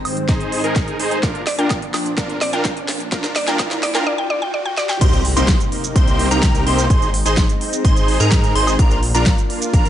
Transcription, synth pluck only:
0, 0, Header, 1, 2, 480
1, 0, Start_track
1, 0, Key_signature, -3, "minor"
1, 0, Tempo, 472441
1, 1252, Time_signature, 4, 2, 24, 8
1, 10051, End_track
2, 0, Start_track
2, 0, Title_t, "Synth pluck"
2, 0, Program_c, 0, 84
2, 1491, Note_on_c, 0, 74, 82
2, 1587, Note_off_c, 0, 74, 0
2, 1611, Note_on_c, 0, 79, 84
2, 1741, Note_off_c, 0, 79, 0
2, 2451, Note_on_c, 0, 74, 89
2, 2547, Note_off_c, 0, 74, 0
2, 2570, Note_on_c, 0, 79, 87
2, 2701, Note_off_c, 0, 79, 0
2, 3412, Note_on_c, 0, 74, 85
2, 3508, Note_off_c, 0, 74, 0
2, 3531, Note_on_c, 0, 79, 91
2, 3632, Note_off_c, 0, 79, 0
2, 3891, Note_on_c, 0, 74, 94
2, 3987, Note_off_c, 0, 74, 0
2, 4011, Note_on_c, 0, 79, 94
2, 4112, Note_off_c, 0, 79, 0
2, 4131, Note_on_c, 0, 74, 99
2, 4227, Note_off_c, 0, 74, 0
2, 4250, Note_on_c, 0, 79, 95
2, 4352, Note_off_c, 0, 79, 0
2, 4370, Note_on_c, 0, 74, 100
2, 4467, Note_off_c, 0, 74, 0
2, 4490, Note_on_c, 0, 79, 93
2, 4592, Note_off_c, 0, 79, 0
2, 4611, Note_on_c, 0, 74, 93
2, 4707, Note_off_c, 0, 74, 0
2, 4730, Note_on_c, 0, 79, 96
2, 4832, Note_off_c, 0, 79, 0
2, 4850, Note_on_c, 0, 74, 99
2, 4947, Note_off_c, 0, 74, 0
2, 4970, Note_on_c, 0, 79, 98
2, 5072, Note_off_c, 0, 79, 0
2, 10051, End_track
0, 0, End_of_file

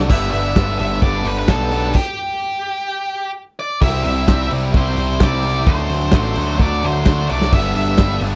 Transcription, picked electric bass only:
0, 0, Header, 1, 2, 480
1, 0, Start_track
1, 0, Key_signature, 1, "major"
1, 0, Tempo, 464756
1, 100, Time_signature, 4, 2, 24, 8
1, 8627, End_track
2, 0, Start_track
2, 0, Title_t, "Picked electric bass"
2, 0, Program_c, 0, 34
2, 107, Note_on_c, 0, 31, 102
2, 331, Note_off_c, 0, 31, 0
2, 341, Note_on_c, 0, 31, 86
2, 567, Note_off_c, 0, 31, 0
2, 577, Note_on_c, 0, 31, 105
2, 805, Note_off_c, 0, 31, 0
2, 824, Note_on_c, 0, 31, 104
2, 1049, Note_off_c, 0, 31, 0
2, 1053, Note_on_c, 0, 31, 105
2, 1280, Note_off_c, 0, 31, 0
2, 1286, Note_on_c, 0, 31, 98
2, 1519, Note_off_c, 0, 31, 0
2, 1535, Note_on_c, 0, 35, 101
2, 1991, Note_off_c, 0, 35, 0
2, 3940, Note_on_c, 0, 36, 106
2, 4166, Note_off_c, 0, 36, 0
2, 4188, Note_on_c, 0, 36, 87
2, 4410, Note_off_c, 0, 36, 0
2, 4420, Note_on_c, 0, 36, 98
2, 4646, Note_off_c, 0, 36, 0
2, 4664, Note_on_c, 0, 36, 93
2, 4888, Note_off_c, 0, 36, 0
2, 4895, Note_on_c, 0, 36, 99
2, 5123, Note_off_c, 0, 36, 0
2, 5132, Note_on_c, 0, 36, 90
2, 5362, Note_off_c, 0, 36, 0
2, 5375, Note_on_c, 0, 36, 102
2, 5830, Note_off_c, 0, 36, 0
2, 5852, Note_on_c, 0, 38, 96
2, 6081, Note_off_c, 0, 38, 0
2, 6090, Note_on_c, 0, 38, 93
2, 6321, Note_off_c, 0, 38, 0
2, 6330, Note_on_c, 0, 33, 94
2, 6561, Note_off_c, 0, 33, 0
2, 6581, Note_on_c, 0, 38, 100
2, 6806, Note_off_c, 0, 38, 0
2, 6815, Note_on_c, 0, 38, 105
2, 7043, Note_off_c, 0, 38, 0
2, 7065, Note_on_c, 0, 38, 97
2, 7287, Note_off_c, 0, 38, 0
2, 7293, Note_on_c, 0, 38, 104
2, 7522, Note_off_c, 0, 38, 0
2, 7549, Note_on_c, 0, 36, 85
2, 7766, Note_off_c, 0, 36, 0
2, 7772, Note_on_c, 0, 31, 101
2, 8002, Note_off_c, 0, 31, 0
2, 8009, Note_on_c, 0, 31, 89
2, 8240, Note_off_c, 0, 31, 0
2, 8246, Note_on_c, 0, 31, 102
2, 8474, Note_off_c, 0, 31, 0
2, 8480, Note_on_c, 0, 31, 100
2, 8627, Note_off_c, 0, 31, 0
2, 8627, End_track
0, 0, End_of_file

